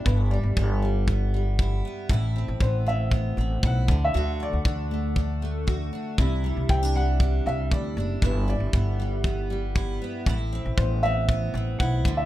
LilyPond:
<<
  \new Staff \with { instrumentName = "Upright piano" } { \time 4/4 \key g \major \tempo 4 = 118 b'8 d''2 r4. | r4 c''8 e''4. fis''8. e''16~ | e''8 d''2. r8 | r4 g''8 fis''4 e''8 d''4 |
b'8 d''2 r4. | r4 c''8 e''4. fis''8. e''16 | }
  \new Staff \with { instrumentName = "Steel-string acoustic guitar" } { \time 4/4 \key g \major <g, e'>8 g8 b8 g8 b8 g8 e'8 b8 | <a, e'>8 c'8 b8 c'8 b8 c'8 e'8 d8 | <d fis'>8 a8 d'8 a8 d'8 a8 fis'8 d'8 | <c e'>8 g8 c'16 d'16 g8 d'8 g8 e'8 d'8 |
<g, e'>8 g8 b8 g8 b8 g8 e'8 b8 | <a, e'>8 c'8 b8 c'8 b8 c'8 e'8 d8 | }
  \new Staff \with { instrumentName = "Upright bass" } { \clef bass \time 4/4 \key g \major g,,8. g,,16 g,,2~ g,,8 r8 | a,,8. a,,16 a,,4. a,,8 b,,8 d,8 | d,8. d,16 d,2~ d,8 r8 | c,8. c,16 c,4. c,8 d,8 fis,,8 |
g,,8. g,,16 g,,2~ g,,8 r8 | a,,8. a,,16 a,,4. a,,8 b,,8 d,8 | }
  \new DrumStaff \with { instrumentName = "Drums" } \drummode { \time 4/4 bd4 bd4 bd4 bd4 | bd4 bd4 bd4 bd8 bd8 | r4 bd4 bd4 bd4 | bd4 bd4 bd4 bd4 |
bd4 bd4 bd4 bd4 | bd4 bd4 bd4 bd8 bd8 | }
>>